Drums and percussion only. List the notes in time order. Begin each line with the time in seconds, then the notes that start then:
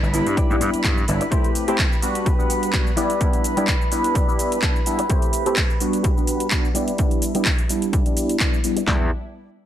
0.03 shaker
0.14 open hi-hat, shaker
0.27 closed hi-hat, shaker
0.37 kick, closed hi-hat, shaker
0.51 shaker
0.61 open hi-hat, shaker
0.74 closed hi-hat, shaker
0.84 kick, clap, closed hi-hat, shaker
0.98 shaker
1.08 open hi-hat, shaker
1.21 closed hi-hat, shaker
1.32 kick, closed hi-hat, shaker
1.44 closed hi-hat, shaker
1.55 open hi-hat, shaker
1.68 closed hi-hat, shaker
1.78 kick, clap, closed hi-hat, shaker
1.92 shaker
2.02 open hi-hat, shaker
2.15 closed hi-hat, shaker
2.26 kick, closed hi-hat, shaker
2.40 shaker
2.50 open hi-hat, shaker
2.63 closed hi-hat, shaker
2.73 kick, clap, closed hi-hat, shaker
2.87 shaker
2.97 open hi-hat, shaker
3.10 closed hi-hat, shaker
3.21 kick, closed hi-hat, shaker
3.33 closed hi-hat, shaker
3.44 open hi-hat, shaker
3.57 closed hi-hat, shaker
3.67 kick, clap, closed hi-hat, shaker
3.81 shaker
3.92 open hi-hat, shaker
4.04 closed hi-hat, shaker
4.15 kick, closed hi-hat, shaker
4.29 shaker
4.39 open hi-hat, shaker
4.52 closed hi-hat, shaker
4.62 kick, clap, closed hi-hat, shaker
4.76 shaker
4.86 open hi-hat, shaker
4.99 closed hi-hat, shaker
5.10 kick, closed hi-hat, shaker
5.22 closed hi-hat, shaker
5.33 open hi-hat, shaker
5.46 closed hi-hat, shaker
5.56 kick, clap, closed hi-hat, shaker
5.70 shaker
5.80 open hi-hat, shaker
5.93 closed hi-hat, shaker
6.04 kick, closed hi-hat, shaker
6.17 shaker
6.27 open hi-hat, shaker
6.40 closed hi-hat, shaker
6.51 kick, clap, closed hi-hat, shaker
6.65 shaker
6.75 open hi-hat, shaker
6.88 closed hi-hat, shaker
6.98 kick, closed hi-hat, shaker
7.11 closed hi-hat, shaker
7.22 open hi-hat, shaker
7.35 closed hi-hat, shaker
7.45 kick, clap, closed hi-hat, shaker
7.58 closed hi-hat, shaker
7.69 open hi-hat, shaker
7.82 closed hi-hat, shaker
7.93 kick, closed hi-hat, shaker
8.06 closed hi-hat, shaker
8.17 open hi-hat, shaker
8.29 closed hi-hat, shaker
8.40 kick, clap, closed hi-hat, shaker
8.54 shaker
8.64 open hi-hat, shaker
8.77 closed hi-hat, shaker
8.87 kick, snare, clap